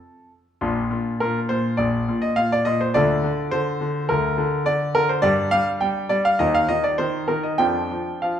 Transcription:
Already playing: A4
0.61 A#1 A#2 D4 F4
0.91 A#2
1.20 A#2 A#4
1.49 A#2 C5
1.77 A#1 A#2 D5
2.08 A#2
2.22 D#5
2.36 A#2 F5
2.52 D5
2.65 A#2 D#5
2.81 C5
2.94 D2 D3 D4 F4 D5
3.24 D3
3.51 D3 C5
3.81 D3
4.09 D2 D3 A#4
4.38 D3
4.66 D3 D5
4.95 D3 A#4
5.09 C5
5.22 G2 G3 D4 G4 D5
5.51 G3 F5
5.81 G3 G5
6.09 G3 D5
6.25 F5
6.39 D#2 D#3 D#4 G4 D#5
6.54 F5
6.69 D#3 D#5
6.84 D5
6.98 D#3 C5
7.28 D#3 A#4
7.43 D#5
7.58 F2 F3 D4 F4 G5
7.92 F3
8.22 F3 F5

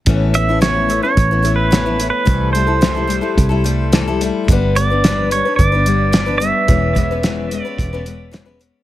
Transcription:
0.06 A1 A2 E3 A3 B3 C#4 E4, kick, closed hi-hat
0.34 A3 B3 C#4 E4 E5, closed hi-hat
0.49 A3 B3 C#4 E4
0.61 A2 E3 A3 B3 C#4 E4 C#5, snare, closed hi-hat
0.89 A3 B3 C#4 E4, closed hi-hat
1.03 A3 B3 C#4 E4 C#5
1.17 A1, kick, closed hi-hat
1.31 A3 B3 C#4 E4
1.43 A3 B3 C#4 E4, closed hi-hat
1.56 B4
1.71 A2 E3 A3 B3 C#4 E4, snare, closed hi-hat
1.86 A3 B3 C#4 E4
1.99 A3 B3 C#4 E4, closed hi-hat
2.10 B4
2.25 C2 C3 E3 G3 A3 E4 A4, kick, closed hi-hat
2.53 G3 A3 E4 C5, closed hi-hat
2.57 A4
2.67 G3 A3 E4 A4
2.81 C3 E3 G3 A3 E4 A4, snare, closed hi-hat
2.95 G3 A3 E4 A4
3.07 G3 A3 E4 A4, closed hi-hat
3.21 G3 A3 E4 A4
3.37 C2, kick, closed hi-hat
3.49 G3 A3 E4 A4
3.64 G3 A3 E4 A4, closed hi-hat
3.92 C3 E3 G3 A3 E4 A4, snare, closed hi-hat
4.08 G3 A3 E4 A4
4.21 G3 A3 E4 A4, closed hi-hat
4.48 G1 G3 B3 D4, kick, closed hi-hat
4.52 B4
4.75 G3 B3 D4 B4 D5, closed hi-hat
4.90 B3 D4 B4
5.04 G3 B3 D4 B4, snare, closed hi-hat
5.31 G3 B3 D4 B4 C#5, closed hi-hat
5.45 B3 D4 B4
5.56 G1 D5, kick, closed hi-hat
5.72 B3 D4 B4
5.86 G3 B3 D4 B4, closed hi-hat
6.12 G3 B3 D4 B4, snare, closed hi-hat
6.26 B3 D4 B4
6.38 G3 B3 D4 B4 E5, closed hi-hat
6.68 E1 E2 E3 G#3 B3 C#4 B4, kick, closed hi-hat
6.95 G#3 B3 C#4 B4, kick, closed hi-hat
7.11 G#3 B3 C#4 B4
7.23 E2 E3 G#3 B3 C#4 B4, snare, closed hi-hat
7.51 G#3 B3 C#4 B4, closed hi-hat
7.62 B3 B4 D5
7.66 G#3 C#4
7.78 E1, kick, closed hi-hat
7.93 G#3 B3 C#4 B4
8.06 G#3 B3 C#4 B4, closed hi-hat
8.31 E2 E3 G#3 B3 C#4 B4, snare, closed hi-hat
8.46 G#3 B3 C#4 B4
8.59 G#3 B3 C#4 B4, closed hi-hat

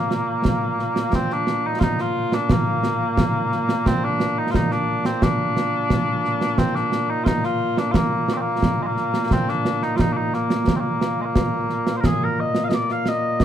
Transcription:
Already playing: A#2 A#3
0.11 snare
0.45 concert bass drum, snare
0.79 snare
0.96 snare
1.13 C4, concert bass drum, snare
1.30 D4, snare
1.47 snare
1.67 D#4
1.79 D#4 F4, concert bass drum, snare
1.98 F4, snare
2.32 D4, snare
2.50 A#3, concert bass drum, snare
2.84 snare
3.18 concert bass drum, snare
3.52 snare
3.69 snare
3.86 C4, concert bass drum, snare
4.04 D4
4.20 snare
4.38 D#4
4.51 F4, concert bass drum, snare
4.55 D#4
4.71 D4, snare
5.05 C4, snare
5.22 D4, concert bass drum, snare
5.57 snare
5.90 concert bass drum, snare
6.25 snare
6.41 snare
6.58 C4, concert bass drum, snare
6.75 D4, snare
6.92 snare
7.10 D#4
7.24 D#4 F4, concert bass drum, snare
7.43 F4, snare
7.77 D4, snare
7.91 F4, concert bass drum, snare
7.96 A#3
8.29 snare
8.33 C4 D4
8.41 A#3
8.63 concert bass drum, snare
8.82 G#3
8.86 A#3
8.97 snare
9.14 snare
9.31 C4, concert bass drum, snare
9.48 D4, snare
9.65 snare
9.82 D#4, snare
9.96 F4, concert bass drum, snare
10.00 D#4
10.13 D4
10.17 D#4
10.34 A#3, snare
10.50 snare
10.68 concert bass drum, snare
10.76 A#3 C4
11.01 snare
11.21 G#3
11.25 A#3
11.36 concert bass drum, snare
11.70 snare
11.87 snare
11.96 A#4 C5
12.04 G#4, concert bass drum, snare
12.24 A#4
12.40 D#5
12.55 snare
12.64 F5
12.68 D#5, snare
12.74 D5
12.89 F5, snare
13.06 D#5, snare
13.40 concert bass drum, snare

